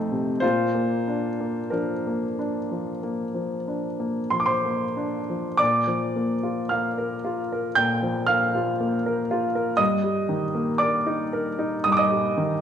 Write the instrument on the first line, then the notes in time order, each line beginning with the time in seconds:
grand piano
Already playing: F2 F3 A3 D#4 C5
0.12 C3
0.40 A#2 F4 C5
0.75 A#3
1.08 D4
1.40 A#3
1.70 F3 D4 A#4
2.07 A#3
2.39 D4
2.71 F3
3.03 A#3
3.34 F3
3.68 D4
4.00 A#3
4.30 F3 C6
4.40 D6
4.46 C5 C6
4.65 A#3
4.97 D4
5.30 F3
5.57 A#2 D5 D6
5.87 F3
6.16 A#3
6.43 F4
6.69 A#3 F5 F6
6.98 A#4
7.24 F4
7.52 A#4
7.75 A#2 G5 G6
8.02 F3
8.27 A#3 F5 F6
8.55 F4
8.81 A#3
9.06 A#4
9.31 F4
9.55 A#4
9.77 G2 D#5 D#6
10.04 G3
10.29 D#3
10.55 A#3
10.78 A#4 D5 D6
11.07 D#4
11.33 A#4
11.59 D#4
11.84 G2 D#6
11.92 D6
11.97 D#5 D#6
12.11 G3
12.37 D#3